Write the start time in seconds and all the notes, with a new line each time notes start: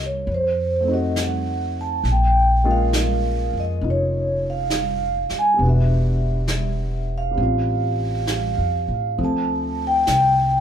Already playing: C2 C3 A#3 D#4 F#4
0.06 C#5
0.27 F2, brush sweep
0.34 C5
0.81 A3 C4
0.88 D#4 F#4
0.94 D#5
1.16 snare, hi-hat pedal
1.23 F#5
1.81 A5
2.04 A#1, brush sweep, snare
2.12 G5
2.64 G#3 A#3 C#4 F4
2.71 F5
2.93 snare, hi-hat pedal
3.53 F2
3.60 D#5
3.81 F1 C#4 D#4 F4, brush sweep
3.90 C#5
4.50 F5
4.70 snare, hi-hat pedal
4.79 F5
5.29 muted upright bass stroke, snare
5.39 G#5
5.54 G3 B3
5.59 E1 D4, brush sweep
5.65 F#4
5.69 E5
6.47 snare, hi-hat pedal
7.18 F5
7.31 G3 C4
7.37 A1 C#4, brush sweep
7.42 F4
8.27 snare, hi-hat pedal
8.37 F5
8.58 F2
8.88 A2
9.18 D2 F3 A3 C4, brush sweep
9.25 A5
9.87 G5
10.07 C2, snare, hi-hat pedal